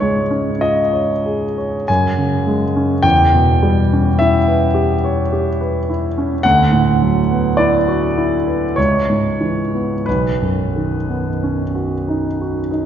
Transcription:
Already playing: C#2 G#2
0.00 G#3 C#5
0.30 C#4
0.61 F4 D#5
0.93 C#5
1.26 G#4
1.58 C#5
1.88 F#2 G#5
2.18 C#3
2.47 G#3
2.76 C#4
3.03 E2 G5
3.34 B2
3.62 G3
3.93 C#4
4.19 E4 E5
4.48 B4
4.74 G4
5.04 C#5
5.33 G4
5.61 B4
5.89 E4
6.18 C#4
6.43 D2 F#5
6.72 A2
7.02 F#3
7.31 B3
7.57 E4 D5
7.88 F#4
8.17 E4
8.47 B4
8.76 C#2 C#5
9.09 G#2
9.41 E3
9.74 B3
10.06 B1 B4
10.42 F#2
10.76 D#3
11.09 B3
11.43 C#4
11.75 F#4
12.08 D#4
12.41 F#4
12.71 D#4

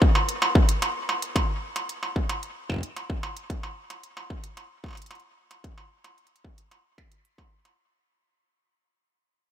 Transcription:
0.02 kick
0.15 struck metal
0.29 closed hi-hat
0.42 struck metal
0.55 kick
0.69 closed hi-hat
0.82 closed hi-hat, struck metal
1.09 struck metal
1.22 closed hi-hat
1.36 kick, closed hi-hat, struck metal
1.76 closed hi-hat, struck metal
1.89 closed hi-hat
2.03 struck metal
2.16 kick
2.29 closed hi-hat, struck metal
2.43 closed hi-hat
2.70 kick, struck metal
2.72 kick
2.74 kick
2.76 kick
2.78 kick
2.81 kick, closed hi-hat
2.96 closed hi-hat, struck metal
3.10 kick
3.23 struck metal
3.37 closed hi-hat
3.50 kick, closed hi-hat
3.63 struck metal
3.90 closed hi-hat, struck metal
4.03 closed hi-hat
4.17 struck metal
4.30 kick
4.44 closed hi-hat
4.57 closed hi-hat, struck metal
4.84 kick, struck metal
4.86 struck metal
4.88 struck metal
4.91 struck metal
4.93 struck metal
4.95 closed hi-hat, struck metal
5.02 closed hi-hat
5.06 closed hi-hat
5.11 closed hi-hat, struck metal
5.20 closed hi-hat
5.51 closed hi-hat, struck metal
5.64 kick, closed hi-hat
5.78 struck metal
6.04 closed hi-hat, struck metal
6.18 closed hi-hat
6.27 closed hi-hat
6.36 closed hi-hat
6.45 kick
6.58 closed hi-hat
6.71 closed hi-hat, struck metal
6.98 kick, struck metal
7.12 closed hi-hat
7.25 closed hi-hat
7.38 kick, struck metal
7.65 closed hi-hat, struck metal

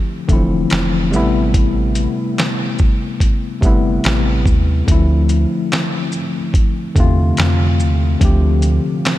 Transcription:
Already playing: D3 F3 A3 C4 E4 G4
0.28 E1 D3 E3 A3 C4, kick, closed hi-hat, shaker
0.33 F3 E4
0.70 F1, snare, clap, closed hi-hat
1.11 A1 C3 G3 A3 B3, shaker
1.16 E4
1.54 kick, closed hi-hat
1.95 closed hi-hat, shaker
2.38 snare, clap, closed hi-hat
2.79 kick, shaker
3.20 kick, closed hi-hat
3.61 G1 C3 G3 A3, kick, closed hi-hat, shaker
3.65 B3 E4
4.04 A1, snare, clap, closed hi-hat
4.46 D#2, kick, shaker
4.86 D2 D3 E3 A3 C4, kick, closed hi-hat
4.92 F3 E4
5.29 closed hi-hat, shaker
5.72 snare, clap, closed hi-hat
6.12 shaker
6.54 kick, closed hi-hat
6.95 E2 C3 D3 A3 C4, kick, closed hi-hat, shaker
7.00 F4
7.37 F2, snare, clap, closed hi-hat
7.80 D#2, shaker
8.20 D2 D3 F3 A3 C4, kick, closed hi-hat
8.25 G4
8.62 closed hi-hat, shaker
9.05 snare, clap, closed hi-hat

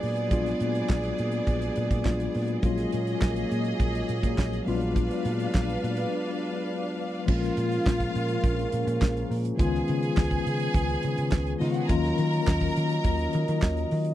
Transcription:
Already playing: F#3 G#3 B3 D4 F4 G#4 D5
0.03 A#2, open hi-hat
0.16 closed hi-hat
0.29 A#1 F#3 G#3 B3 D4 F4, kick, closed hi-hat
0.46 snare, closed hi-hat
0.60 A#2, closed hi-hat
0.75 closed hi-hat
0.89 A#1, kick, snare, clap
1.04 closed hi-hat
1.18 A#2, closed hi-hat
1.32 closed hi-hat
1.47 A#1, kick, closed hi-hat
1.62 closed hi-hat
1.76 A#2, closed hi-hat
1.91 A#2, kick, closed hi-hat
2.04 A#1 F#3 G#3 B3 D4 F4, kick, snare, clap
2.20 closed hi-hat
2.34 A#2, open hi-hat
2.48 closed hi-hat
2.62 A#1 F#3 G#3 A#3 C#4 F4 G#4 C#5 D#5, kick, closed hi-hat
2.78 snare, closed hi-hat
2.92 A#2, closed hi-hat
3.07 closed hi-hat
3.22 A#1, kick, snare, clap
3.36 closed hi-hat
3.51 A#2, closed hi-hat
3.65 closed hi-hat
3.80 A#1, kick, closed hi-hat
3.95 closed hi-hat
4.09 A#2, closed hi-hat
4.23 A#2, kick, closed hi-hat
4.38 A#1, kick, snare, clap
4.53 closed hi-hat
4.65 A#1 F#3 G#3 B3 C#4 D4 F4 B4 F5, open hi-hat
4.74 D4
4.81 closed hi-hat
4.96 kick, closed hi-hat
5.11 closed hi-hat
5.25 A#2, closed hi-hat
5.40 closed hi-hat
5.55 A#1, kick, snare, clap
5.69 closed hi-hat
5.84 A#2, closed hi-hat
5.97 closed hi-hat
7.26 A#1 F3 G#3 A#3 C#4 F4 G#4 A#4 F5, kick, crash
7.43 snare, closed hi-hat
7.57 A#2, closed hi-hat
7.72 closed hi-hat
7.86 A#1, kick, snare, clap
8.00 kick, closed hi-hat
8.15 A#2, closed hi-hat
8.28 closed hi-hat
8.43 A#1, kick, closed hi-hat
8.59 closed hi-hat
8.72 A#2, closed hi-hat
8.87 A#2, closed hi-hat
9.02 A#1, kick, snare, clap
9.17 closed hi-hat
9.31 A#2, open hi-hat
9.45 closed hi-hat
9.57 C#2 D#3 G#3 B3 C#4 F4 G#4 B4 G#5, kick, closed hi-hat
9.75 snare
9.88 C#3, closed hi-hat
10.03 closed hi-hat
10.17 C#2, kick, snare, clap
10.31 kick, closed hi-hat
10.46 C#3, closed hi-hat
10.60 closed hi-hat
10.74 C#2, kick, closed hi-hat
10.89 closed hi-hat
11.03 C#3, closed hi-hat
11.18 C#3, closed hi-hat
11.32 C#2, kick, snare, clap
11.47 closed hi-hat
11.60 C#3 D#3 G#3 B3 C#4 D#4 F4 D#5, open hi-hat
11.67 F4 F5
11.74 F#4 F#5, closed hi-hat
11.81 G#4 G#5
11.88 D#2 D#3 F3 F#3 A#3 C#4 F4 A#4 D#5 A#5, kick, closed hi-hat
11.95 F#3
12.04 snare, closed hi-hat
12.18 D#3, closed hi-hat
12.33 closed hi-hat
12.47 D#2, kick, snare, clap
12.61 kick, closed hi-hat
12.76 D#3, closed hi-hat
12.89 closed hi-hat
13.04 D#2, kick, closed hi-hat
13.19 closed hi-hat
13.33 D#3, closed hi-hat
13.48 D#3, closed hi-hat
13.62 D#2, kick, snare, clap
13.77 closed hi-hat
13.91 D#3, open hi-hat
14.05 closed hi-hat

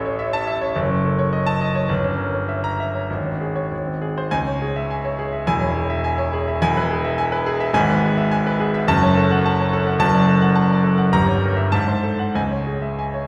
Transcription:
Already playing: A1 C#4 A4
0.05 C#5
0.19 E5
0.33 A5
0.47 E5
0.61 C#5
0.76 F#1
0.90 C#4
1.05 A4
1.19 C#5
1.33 D#5
1.46 A5
1.61 D#5
1.75 C#5
1.89 G1
2.04 C#4
2.18 A#4
2.34 C#5
2.49 E5
2.64 A#5
2.80 E5
2.95 C#5
3.10 G#1
3.25 C#4
3.41 G#4
3.56 C#5
3.71 G#1
3.86 C4
4.02 G#4
4.18 C5
4.31 C#2 G#5
4.47 C#5
4.62 G#4
4.76 E5
4.90 G#5
5.05 C#5
5.19 G#4
5.33 E5
5.46 E1 E2 G#5
5.61 C#5
5.75 G#4
5.90 E5
6.04 G#5
6.18 C#5
6.33 G#4
6.48 E5
6.61 E1 E2 G#5
6.77 B4
6.91 G#4
7.05 E5
7.18 G#5
7.32 B4
7.46 G#4
7.60 E5
7.73 G#1 G#2 G#5
7.90 B4
8.04 G#4
8.17 E5
8.31 G#5
8.47 B4
8.60 G#4
8.74 E5
8.87 F#1 F#2 A5
9.03 C#5
9.17 A4
9.31 F#5
9.46 A5
9.60 C#5
9.73 A4
9.87 F#5
9.99 F#1 F#2 A5
10.14 D5
10.28 A4
10.42 F#5
10.55 A5
10.70 D5
10.84 A4
10.98 F#5
11.12 G1 G2 A#5
11.27 C#5
11.42 A#4
11.57 E5
11.72 G#2 A5
11.88 C5
12.03 A4
12.19 F#5
12.35 C#2 G#5
12.51 C#5
12.67 G#4
12.82 E5
12.99 G#5
13.14 C#5

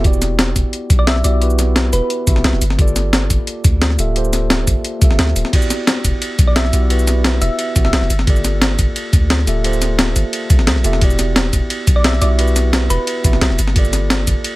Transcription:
Already playing: E1
0.02 B3 E4 F#4, kick, closed hi-hat
0.06 G4 D5
0.13 shaker
0.22 snare, closed hi-hat, shaker
0.39 snare, closed hi-hat
0.56 E1, kick, closed hi-hat, shaker
0.73 closed hi-hat
0.90 B1, kick, closed hi-hat, shaker
0.99 D5
1.07 E5, snare, closed hi-hat
1.16 snare
1.23 B1 B3 E4 F#4 G4 D5 E5, closed hi-hat, shaker
1.40 B3 E4 F#4 G4 B4, closed hi-hat
1.50 shaker
1.59 snare, closed hi-hat, shaker
1.76 snare, closed hi-hat
1.93 E1 B4, closed hi-hat, shaker
2.10 closed hi-hat
2.26 A1 B3 E4 F#4 G4 E5, kick, closed hi-hat, shaker
2.36 E1, snare
2.44 B1, snare, closed hi-hat
2.53 E1, snare
2.61 G1, closed hi-hat, shaker
2.70 snare
2.76 A#3 F4 G4, kick, closed hi-hat
2.80 A4 D5
2.88 shaker
2.96 snare, closed hi-hat, shaker
3.13 snare, closed hi-hat
3.30 G1, kick, closed hi-hat, shaker
3.47 closed hi-hat
3.64 D2, kick, closed hi-hat, shaker
3.82 snare, closed hi-hat
3.90 snare
3.97 D1 A#3 F4 G4 A4 E5, closed hi-hat, shaker
4.14 A#3 F4 G4 A4 C5, closed hi-hat
4.25 shaker
4.33 snare, closed hi-hat, shaker
4.50 snare, closed hi-hat
4.67 G1, kick, closed hi-hat, shaker
4.84 closed hi-hat
4.99 C2 A#3 F4 G4, kick, closed hi-hat, shaker
5.03 A4 E5
5.10 G1, snare
5.19 D2, snare, closed hi-hat
5.28 snare
5.36 D1, closed hi-hat, shaker
5.45 snare
5.50 B3 E4 F#4, kick, closed hi-hat, ride bell, crash
5.54 G4 D5
5.62 shaker
5.70 snare, closed hi-hat, ride bell, shaker
5.87 snare, closed hi-hat, ride bell
6.04 E1, kick, closed hi-hat, ride bell, shaker
6.22 closed hi-hat, ride bell
6.39 B1, kick, closed hi-hat, ride bell, shaker
6.47 D5
6.56 E5, snare, closed hi-hat, ride bell
6.65 snare
6.72 B1 B3 E4 F#4 G4 E5, closed hi-hat, ride bell, shaker
6.89 B3 E4 F#4 G4 B4, closed hi-hat, ride bell
6.99 shaker
7.07 snare, closed hi-hat, ride bell, shaker
7.24 snare, closed hi-hat, ride bell
7.41 E1 E5, closed hi-hat, ride bell, shaker
7.59 closed hi-hat, ride bell
7.75 A1 B3 E4 F#4 G4 E5, kick, closed hi-hat, ride bell, shaker
7.84 E1 E5, snare
7.93 B1, snare, closed hi-hat, ride bell
8.02 E1, snare
8.10 G1, closed hi-hat, ride bell, shaker
8.19 snare
8.25 A#3 F4 G4, kick, closed hi-hat, ride bell
8.29 A4 D5
8.36 shaker
8.44 snare, closed hi-hat, ride bell, shaker
8.62 snare, closed hi-hat, ride bell
8.79 G1, kick, closed hi-hat, ride bell, shaker
8.96 closed hi-hat, ride bell
9.13 D2, kick, closed hi-hat, ride bell, shaker
9.30 snare, closed hi-hat, ride bell
9.39 snare
9.46 D1 A#3 F4 G4 A4 E5, closed hi-hat, ride bell, shaker
9.63 A#3 F4 G4 A4 C5, closed hi-hat, ride bell
9.73 shaker
9.82 snare, closed hi-hat, ride bell, shaker
9.99 snare, closed hi-hat, ride bell
10.16 G1, closed hi-hat, ride bell, shaker
10.33 closed hi-hat, ride bell
10.50 C2, kick, closed hi-hat, ride bell, shaker
10.59 G1, snare
10.67 D2, snare, closed hi-hat, ride bell
10.76 A#1, snare
10.83 E1 A#3 F4 G4 A4 E5, closed hi-hat, ride bell, shaker
10.93 snare
10.99 B3 E4 F#4, kick, closed hi-hat, ride bell
11.03 G4 D5
11.10 shaker
11.19 snare, closed hi-hat, ride bell, shaker
11.36 snare, closed hi-hat, ride bell
11.53 E1, kick, closed hi-hat, ride bell, shaker
11.70 closed hi-hat, ride bell
11.87 B1, kick, closed hi-hat, ride bell, shaker
11.96 D5
12.04 E5, snare, closed hi-hat, ride bell
12.13 snare
12.20 B1 B3 E4 F#4 G4 D5 E5, closed hi-hat, ride bell, shaker
12.37 B3 E4 F#4 G4 B4, closed hi-hat, ride bell
12.48 shaker
12.56 snare, closed hi-hat, ride bell, shaker
12.73 snare, closed hi-hat, ride bell
12.90 E1 B4, closed hi-hat, ride bell, shaker
13.07 closed hi-hat, ride bell
13.23 A1 B3 E4 F#4 G4 E5, kick, closed hi-hat, ride bell, shaker
13.33 E1, snare
13.41 B1, snare, closed hi-hat, ride bell
13.50 E1, snare
13.59 G1, closed hi-hat, ride bell, shaker
13.67 snare
13.73 A#3 F4 G4, kick, closed hi-hat, ride bell
13.77 A4 D5
13.85 shaker
13.93 snare, closed hi-hat, ride bell, shaker
14.10 snare, closed hi-hat, ride bell
14.27 G1, kick, closed hi-hat, ride bell, shaker
14.44 closed hi-hat, ride bell

